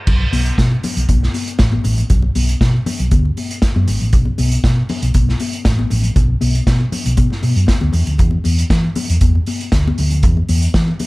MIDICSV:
0, 0, Header, 1, 3, 480
1, 0, Start_track
1, 0, Tempo, 508044
1, 63, Time_signature, 4, 2, 24, 8
1, 10458, End_track
2, 0, Start_track
2, 0, Title_t, "Fingered electric bass"
2, 0, Program_c, 0, 33
2, 68, Note_on_c, 0, 35, 90
2, 233, Note_off_c, 0, 35, 0
2, 307, Note_on_c, 0, 35, 75
2, 473, Note_off_c, 0, 35, 0
2, 549, Note_on_c, 0, 47, 85
2, 714, Note_off_c, 0, 47, 0
2, 913, Note_on_c, 0, 35, 72
2, 990, Note_off_c, 0, 35, 0
2, 1028, Note_on_c, 0, 35, 94
2, 1193, Note_off_c, 0, 35, 0
2, 1508, Note_on_c, 0, 33, 84
2, 1673, Note_off_c, 0, 33, 0
2, 1746, Note_on_c, 0, 33, 73
2, 1911, Note_off_c, 0, 33, 0
2, 1986, Note_on_c, 0, 35, 92
2, 2152, Note_off_c, 0, 35, 0
2, 2226, Note_on_c, 0, 35, 87
2, 2391, Note_off_c, 0, 35, 0
2, 2465, Note_on_c, 0, 47, 79
2, 2631, Note_off_c, 0, 47, 0
2, 2832, Note_on_c, 0, 35, 85
2, 2910, Note_off_c, 0, 35, 0
2, 2944, Note_on_c, 0, 38, 84
2, 3110, Note_off_c, 0, 38, 0
2, 3552, Note_on_c, 0, 42, 86
2, 3629, Note_off_c, 0, 42, 0
2, 3666, Note_on_c, 0, 32, 80
2, 3753, Note_off_c, 0, 32, 0
2, 3794, Note_on_c, 0, 33, 67
2, 3901, Note_off_c, 0, 33, 0
2, 3901, Note_on_c, 0, 35, 88
2, 4068, Note_off_c, 0, 35, 0
2, 4146, Note_on_c, 0, 35, 90
2, 4311, Note_off_c, 0, 35, 0
2, 4383, Note_on_c, 0, 47, 85
2, 4550, Note_off_c, 0, 47, 0
2, 4749, Note_on_c, 0, 35, 82
2, 4828, Note_off_c, 0, 35, 0
2, 4861, Note_on_c, 0, 35, 81
2, 5029, Note_off_c, 0, 35, 0
2, 5342, Note_on_c, 0, 33, 89
2, 5509, Note_off_c, 0, 33, 0
2, 5584, Note_on_c, 0, 33, 84
2, 5750, Note_off_c, 0, 33, 0
2, 5819, Note_on_c, 0, 35, 99
2, 5987, Note_off_c, 0, 35, 0
2, 6064, Note_on_c, 0, 35, 84
2, 6230, Note_off_c, 0, 35, 0
2, 6301, Note_on_c, 0, 47, 73
2, 6468, Note_off_c, 0, 47, 0
2, 6669, Note_on_c, 0, 35, 82
2, 6748, Note_off_c, 0, 35, 0
2, 6778, Note_on_c, 0, 47, 95
2, 6868, Note_off_c, 0, 47, 0
2, 7021, Note_on_c, 0, 47, 87
2, 7110, Note_off_c, 0, 47, 0
2, 7143, Note_on_c, 0, 42, 80
2, 7224, Note_off_c, 0, 42, 0
2, 7384, Note_on_c, 0, 38, 88
2, 7465, Note_off_c, 0, 38, 0
2, 7499, Note_on_c, 0, 40, 81
2, 7589, Note_off_c, 0, 40, 0
2, 7626, Note_on_c, 0, 38, 59
2, 7742, Note_off_c, 0, 38, 0
2, 7742, Note_on_c, 0, 40, 79
2, 7909, Note_off_c, 0, 40, 0
2, 7983, Note_on_c, 0, 40, 78
2, 8150, Note_off_c, 0, 40, 0
2, 8221, Note_on_c, 0, 52, 81
2, 8389, Note_off_c, 0, 52, 0
2, 8595, Note_on_c, 0, 40, 78
2, 8672, Note_off_c, 0, 40, 0
2, 8706, Note_on_c, 0, 40, 84
2, 8872, Note_off_c, 0, 40, 0
2, 9188, Note_on_c, 0, 38, 86
2, 9354, Note_off_c, 0, 38, 0
2, 9435, Note_on_c, 0, 38, 82
2, 9668, Note_off_c, 0, 38, 0
2, 9668, Note_on_c, 0, 40, 100
2, 9834, Note_off_c, 0, 40, 0
2, 9912, Note_on_c, 0, 40, 84
2, 10077, Note_off_c, 0, 40, 0
2, 10149, Note_on_c, 0, 52, 90
2, 10315, Note_off_c, 0, 52, 0
2, 10458, End_track
3, 0, Start_track
3, 0, Title_t, "Drums"
3, 65, Note_on_c, 9, 49, 79
3, 68, Note_on_c, 9, 64, 64
3, 69, Note_on_c, 9, 36, 100
3, 160, Note_off_c, 9, 49, 0
3, 162, Note_off_c, 9, 64, 0
3, 163, Note_off_c, 9, 36, 0
3, 309, Note_on_c, 9, 63, 71
3, 311, Note_on_c, 9, 46, 60
3, 404, Note_off_c, 9, 63, 0
3, 405, Note_off_c, 9, 46, 0
3, 435, Note_on_c, 9, 42, 49
3, 529, Note_off_c, 9, 42, 0
3, 549, Note_on_c, 9, 36, 93
3, 552, Note_on_c, 9, 38, 104
3, 554, Note_on_c, 9, 42, 54
3, 561, Note_on_c, 9, 62, 35
3, 643, Note_off_c, 9, 36, 0
3, 646, Note_off_c, 9, 38, 0
3, 649, Note_off_c, 9, 42, 0
3, 655, Note_off_c, 9, 62, 0
3, 675, Note_on_c, 9, 62, 36
3, 769, Note_off_c, 9, 62, 0
3, 789, Note_on_c, 9, 46, 65
3, 793, Note_on_c, 9, 63, 73
3, 793, Note_on_c, 9, 64, 74
3, 884, Note_off_c, 9, 46, 0
3, 888, Note_off_c, 9, 63, 0
3, 888, Note_off_c, 9, 64, 0
3, 917, Note_on_c, 9, 42, 47
3, 1011, Note_off_c, 9, 42, 0
3, 1027, Note_on_c, 9, 42, 66
3, 1029, Note_on_c, 9, 36, 94
3, 1029, Note_on_c, 9, 62, 33
3, 1029, Note_on_c, 9, 63, 73
3, 1122, Note_off_c, 9, 42, 0
3, 1124, Note_off_c, 9, 36, 0
3, 1124, Note_off_c, 9, 62, 0
3, 1124, Note_off_c, 9, 63, 0
3, 1163, Note_on_c, 9, 38, 35
3, 1257, Note_off_c, 9, 38, 0
3, 1267, Note_on_c, 9, 46, 49
3, 1269, Note_on_c, 9, 63, 71
3, 1362, Note_off_c, 9, 46, 0
3, 1363, Note_off_c, 9, 63, 0
3, 1392, Note_on_c, 9, 42, 41
3, 1487, Note_off_c, 9, 42, 0
3, 1496, Note_on_c, 9, 62, 40
3, 1500, Note_on_c, 9, 38, 98
3, 1505, Note_on_c, 9, 42, 55
3, 1507, Note_on_c, 9, 36, 104
3, 1591, Note_off_c, 9, 62, 0
3, 1594, Note_off_c, 9, 38, 0
3, 1599, Note_off_c, 9, 42, 0
3, 1601, Note_off_c, 9, 36, 0
3, 1628, Note_on_c, 9, 63, 79
3, 1722, Note_off_c, 9, 63, 0
3, 1739, Note_on_c, 9, 64, 73
3, 1743, Note_on_c, 9, 46, 60
3, 1833, Note_off_c, 9, 64, 0
3, 1838, Note_off_c, 9, 46, 0
3, 1869, Note_on_c, 9, 42, 39
3, 1963, Note_off_c, 9, 42, 0
3, 1982, Note_on_c, 9, 42, 62
3, 1982, Note_on_c, 9, 62, 28
3, 1982, Note_on_c, 9, 64, 65
3, 1985, Note_on_c, 9, 36, 100
3, 2076, Note_off_c, 9, 42, 0
3, 2076, Note_off_c, 9, 62, 0
3, 2076, Note_off_c, 9, 64, 0
3, 2080, Note_off_c, 9, 36, 0
3, 2101, Note_on_c, 9, 62, 37
3, 2196, Note_off_c, 9, 62, 0
3, 2222, Note_on_c, 9, 46, 60
3, 2225, Note_on_c, 9, 63, 64
3, 2317, Note_off_c, 9, 46, 0
3, 2319, Note_off_c, 9, 63, 0
3, 2351, Note_on_c, 9, 42, 49
3, 2445, Note_off_c, 9, 42, 0
3, 2464, Note_on_c, 9, 36, 95
3, 2467, Note_on_c, 9, 38, 87
3, 2469, Note_on_c, 9, 42, 56
3, 2471, Note_on_c, 9, 62, 33
3, 2559, Note_off_c, 9, 36, 0
3, 2561, Note_off_c, 9, 38, 0
3, 2564, Note_off_c, 9, 42, 0
3, 2566, Note_off_c, 9, 62, 0
3, 2588, Note_on_c, 9, 62, 33
3, 2682, Note_off_c, 9, 62, 0
3, 2704, Note_on_c, 9, 63, 71
3, 2704, Note_on_c, 9, 64, 73
3, 2706, Note_on_c, 9, 46, 65
3, 2799, Note_off_c, 9, 63, 0
3, 2799, Note_off_c, 9, 64, 0
3, 2800, Note_off_c, 9, 46, 0
3, 2830, Note_on_c, 9, 42, 47
3, 2924, Note_off_c, 9, 42, 0
3, 2941, Note_on_c, 9, 42, 58
3, 2944, Note_on_c, 9, 36, 106
3, 2947, Note_on_c, 9, 62, 34
3, 2947, Note_on_c, 9, 63, 74
3, 3036, Note_off_c, 9, 42, 0
3, 3039, Note_off_c, 9, 36, 0
3, 3041, Note_off_c, 9, 62, 0
3, 3041, Note_off_c, 9, 63, 0
3, 3072, Note_on_c, 9, 62, 34
3, 3167, Note_off_c, 9, 62, 0
3, 3185, Note_on_c, 9, 46, 50
3, 3188, Note_on_c, 9, 63, 67
3, 3279, Note_off_c, 9, 46, 0
3, 3283, Note_off_c, 9, 63, 0
3, 3312, Note_on_c, 9, 42, 43
3, 3407, Note_off_c, 9, 42, 0
3, 3418, Note_on_c, 9, 38, 99
3, 3423, Note_on_c, 9, 42, 62
3, 3424, Note_on_c, 9, 36, 105
3, 3513, Note_off_c, 9, 38, 0
3, 3518, Note_off_c, 9, 36, 0
3, 3518, Note_off_c, 9, 42, 0
3, 3553, Note_on_c, 9, 63, 76
3, 3648, Note_off_c, 9, 63, 0
3, 3662, Note_on_c, 9, 46, 63
3, 3662, Note_on_c, 9, 64, 75
3, 3756, Note_off_c, 9, 64, 0
3, 3757, Note_off_c, 9, 46, 0
3, 3789, Note_on_c, 9, 42, 39
3, 3884, Note_off_c, 9, 42, 0
3, 3899, Note_on_c, 9, 42, 59
3, 3902, Note_on_c, 9, 36, 105
3, 3904, Note_on_c, 9, 64, 64
3, 3993, Note_off_c, 9, 42, 0
3, 3997, Note_off_c, 9, 36, 0
3, 3999, Note_off_c, 9, 64, 0
3, 4019, Note_on_c, 9, 62, 37
3, 4113, Note_off_c, 9, 62, 0
3, 4138, Note_on_c, 9, 63, 71
3, 4140, Note_on_c, 9, 46, 60
3, 4233, Note_off_c, 9, 63, 0
3, 4235, Note_off_c, 9, 46, 0
3, 4266, Note_on_c, 9, 42, 46
3, 4361, Note_off_c, 9, 42, 0
3, 4381, Note_on_c, 9, 36, 111
3, 4382, Note_on_c, 9, 38, 95
3, 4385, Note_on_c, 9, 42, 55
3, 4386, Note_on_c, 9, 62, 32
3, 4476, Note_off_c, 9, 36, 0
3, 4477, Note_off_c, 9, 38, 0
3, 4479, Note_off_c, 9, 42, 0
3, 4481, Note_off_c, 9, 62, 0
3, 4620, Note_on_c, 9, 46, 72
3, 4626, Note_on_c, 9, 63, 74
3, 4626, Note_on_c, 9, 64, 77
3, 4714, Note_off_c, 9, 46, 0
3, 4721, Note_off_c, 9, 63, 0
3, 4721, Note_off_c, 9, 64, 0
3, 4747, Note_on_c, 9, 42, 52
3, 4842, Note_off_c, 9, 42, 0
3, 4857, Note_on_c, 9, 42, 61
3, 4861, Note_on_c, 9, 63, 75
3, 4862, Note_on_c, 9, 36, 104
3, 4952, Note_off_c, 9, 42, 0
3, 4955, Note_off_c, 9, 63, 0
3, 4957, Note_off_c, 9, 36, 0
3, 4996, Note_on_c, 9, 38, 36
3, 5091, Note_off_c, 9, 38, 0
3, 5097, Note_on_c, 9, 46, 53
3, 5107, Note_on_c, 9, 63, 77
3, 5192, Note_off_c, 9, 46, 0
3, 5201, Note_off_c, 9, 63, 0
3, 5224, Note_on_c, 9, 42, 43
3, 5319, Note_off_c, 9, 42, 0
3, 5334, Note_on_c, 9, 62, 38
3, 5338, Note_on_c, 9, 38, 108
3, 5342, Note_on_c, 9, 36, 109
3, 5342, Note_on_c, 9, 42, 62
3, 5428, Note_off_c, 9, 62, 0
3, 5432, Note_off_c, 9, 38, 0
3, 5436, Note_off_c, 9, 36, 0
3, 5437, Note_off_c, 9, 42, 0
3, 5469, Note_on_c, 9, 63, 84
3, 5563, Note_off_c, 9, 63, 0
3, 5577, Note_on_c, 9, 64, 74
3, 5582, Note_on_c, 9, 46, 60
3, 5672, Note_off_c, 9, 64, 0
3, 5677, Note_off_c, 9, 46, 0
3, 5704, Note_on_c, 9, 42, 43
3, 5798, Note_off_c, 9, 42, 0
3, 5817, Note_on_c, 9, 64, 63
3, 5819, Note_on_c, 9, 42, 63
3, 5820, Note_on_c, 9, 36, 110
3, 5911, Note_off_c, 9, 64, 0
3, 5914, Note_off_c, 9, 42, 0
3, 5915, Note_off_c, 9, 36, 0
3, 6054, Note_on_c, 9, 63, 75
3, 6060, Note_on_c, 9, 46, 54
3, 6149, Note_off_c, 9, 63, 0
3, 6154, Note_off_c, 9, 46, 0
3, 6188, Note_on_c, 9, 42, 49
3, 6282, Note_off_c, 9, 42, 0
3, 6300, Note_on_c, 9, 36, 98
3, 6301, Note_on_c, 9, 38, 96
3, 6303, Note_on_c, 9, 42, 57
3, 6308, Note_on_c, 9, 62, 31
3, 6395, Note_off_c, 9, 36, 0
3, 6395, Note_off_c, 9, 38, 0
3, 6398, Note_off_c, 9, 42, 0
3, 6403, Note_off_c, 9, 62, 0
3, 6433, Note_on_c, 9, 62, 36
3, 6527, Note_off_c, 9, 62, 0
3, 6540, Note_on_c, 9, 63, 69
3, 6540, Note_on_c, 9, 64, 68
3, 6542, Note_on_c, 9, 46, 66
3, 6635, Note_off_c, 9, 63, 0
3, 6635, Note_off_c, 9, 64, 0
3, 6636, Note_off_c, 9, 46, 0
3, 6667, Note_on_c, 9, 42, 53
3, 6761, Note_off_c, 9, 42, 0
3, 6775, Note_on_c, 9, 42, 64
3, 6777, Note_on_c, 9, 62, 33
3, 6777, Note_on_c, 9, 63, 76
3, 6779, Note_on_c, 9, 36, 106
3, 6870, Note_off_c, 9, 42, 0
3, 6872, Note_off_c, 9, 62, 0
3, 6872, Note_off_c, 9, 63, 0
3, 6874, Note_off_c, 9, 36, 0
3, 6899, Note_on_c, 9, 62, 37
3, 6915, Note_on_c, 9, 38, 37
3, 6994, Note_off_c, 9, 62, 0
3, 7010, Note_off_c, 9, 38, 0
3, 7016, Note_on_c, 9, 63, 70
3, 7018, Note_on_c, 9, 46, 52
3, 7110, Note_off_c, 9, 63, 0
3, 7113, Note_off_c, 9, 46, 0
3, 7145, Note_on_c, 9, 42, 42
3, 7240, Note_off_c, 9, 42, 0
3, 7245, Note_on_c, 9, 62, 38
3, 7245, Note_on_c, 9, 63, 59
3, 7257, Note_on_c, 9, 38, 95
3, 7260, Note_on_c, 9, 36, 96
3, 7261, Note_on_c, 9, 42, 59
3, 7339, Note_off_c, 9, 62, 0
3, 7339, Note_off_c, 9, 63, 0
3, 7351, Note_off_c, 9, 38, 0
3, 7355, Note_off_c, 9, 36, 0
3, 7356, Note_off_c, 9, 42, 0
3, 7381, Note_on_c, 9, 62, 39
3, 7381, Note_on_c, 9, 63, 85
3, 7475, Note_off_c, 9, 62, 0
3, 7475, Note_off_c, 9, 63, 0
3, 7489, Note_on_c, 9, 64, 74
3, 7495, Note_on_c, 9, 46, 58
3, 7584, Note_off_c, 9, 64, 0
3, 7590, Note_off_c, 9, 46, 0
3, 7623, Note_on_c, 9, 42, 44
3, 7717, Note_off_c, 9, 42, 0
3, 7732, Note_on_c, 9, 64, 63
3, 7739, Note_on_c, 9, 42, 63
3, 7741, Note_on_c, 9, 36, 108
3, 7827, Note_off_c, 9, 64, 0
3, 7833, Note_off_c, 9, 42, 0
3, 7835, Note_off_c, 9, 36, 0
3, 7850, Note_on_c, 9, 62, 40
3, 7944, Note_off_c, 9, 62, 0
3, 7975, Note_on_c, 9, 63, 70
3, 7983, Note_on_c, 9, 46, 58
3, 8069, Note_off_c, 9, 63, 0
3, 8077, Note_off_c, 9, 46, 0
3, 8111, Note_on_c, 9, 42, 48
3, 8205, Note_off_c, 9, 42, 0
3, 8222, Note_on_c, 9, 36, 95
3, 8223, Note_on_c, 9, 38, 94
3, 8225, Note_on_c, 9, 42, 54
3, 8316, Note_off_c, 9, 36, 0
3, 8317, Note_off_c, 9, 38, 0
3, 8320, Note_off_c, 9, 42, 0
3, 8352, Note_on_c, 9, 62, 33
3, 8446, Note_off_c, 9, 62, 0
3, 8461, Note_on_c, 9, 46, 68
3, 8465, Note_on_c, 9, 63, 78
3, 8465, Note_on_c, 9, 64, 70
3, 8555, Note_off_c, 9, 46, 0
3, 8560, Note_off_c, 9, 63, 0
3, 8560, Note_off_c, 9, 64, 0
3, 8594, Note_on_c, 9, 42, 52
3, 8688, Note_off_c, 9, 42, 0
3, 8700, Note_on_c, 9, 42, 61
3, 8704, Note_on_c, 9, 36, 105
3, 8709, Note_on_c, 9, 63, 75
3, 8795, Note_off_c, 9, 42, 0
3, 8798, Note_off_c, 9, 36, 0
3, 8803, Note_off_c, 9, 63, 0
3, 8837, Note_on_c, 9, 62, 36
3, 8931, Note_off_c, 9, 62, 0
3, 8942, Note_on_c, 9, 46, 54
3, 8953, Note_on_c, 9, 63, 70
3, 9037, Note_off_c, 9, 46, 0
3, 9047, Note_off_c, 9, 63, 0
3, 9075, Note_on_c, 9, 42, 40
3, 9170, Note_off_c, 9, 42, 0
3, 9183, Note_on_c, 9, 38, 95
3, 9187, Note_on_c, 9, 36, 104
3, 9187, Note_on_c, 9, 42, 64
3, 9188, Note_on_c, 9, 62, 33
3, 9277, Note_off_c, 9, 38, 0
3, 9282, Note_off_c, 9, 36, 0
3, 9282, Note_off_c, 9, 42, 0
3, 9282, Note_off_c, 9, 62, 0
3, 9330, Note_on_c, 9, 62, 42
3, 9330, Note_on_c, 9, 63, 90
3, 9425, Note_off_c, 9, 62, 0
3, 9425, Note_off_c, 9, 63, 0
3, 9427, Note_on_c, 9, 46, 60
3, 9440, Note_on_c, 9, 64, 68
3, 9522, Note_off_c, 9, 46, 0
3, 9535, Note_off_c, 9, 64, 0
3, 9549, Note_on_c, 9, 42, 42
3, 9644, Note_off_c, 9, 42, 0
3, 9663, Note_on_c, 9, 42, 66
3, 9668, Note_on_c, 9, 36, 113
3, 9676, Note_on_c, 9, 64, 66
3, 9758, Note_off_c, 9, 42, 0
3, 9762, Note_off_c, 9, 36, 0
3, 9771, Note_off_c, 9, 64, 0
3, 9796, Note_on_c, 9, 62, 38
3, 9891, Note_off_c, 9, 62, 0
3, 9907, Note_on_c, 9, 46, 65
3, 9909, Note_on_c, 9, 63, 66
3, 10001, Note_off_c, 9, 46, 0
3, 10004, Note_off_c, 9, 63, 0
3, 10035, Note_on_c, 9, 42, 48
3, 10129, Note_off_c, 9, 42, 0
3, 10148, Note_on_c, 9, 36, 105
3, 10148, Note_on_c, 9, 38, 101
3, 10150, Note_on_c, 9, 42, 56
3, 10242, Note_off_c, 9, 38, 0
3, 10243, Note_off_c, 9, 36, 0
3, 10245, Note_off_c, 9, 42, 0
3, 10278, Note_on_c, 9, 62, 35
3, 10373, Note_off_c, 9, 62, 0
3, 10387, Note_on_c, 9, 46, 67
3, 10392, Note_on_c, 9, 63, 66
3, 10392, Note_on_c, 9, 64, 73
3, 10458, Note_off_c, 9, 46, 0
3, 10458, Note_off_c, 9, 63, 0
3, 10458, Note_off_c, 9, 64, 0
3, 10458, End_track
0, 0, End_of_file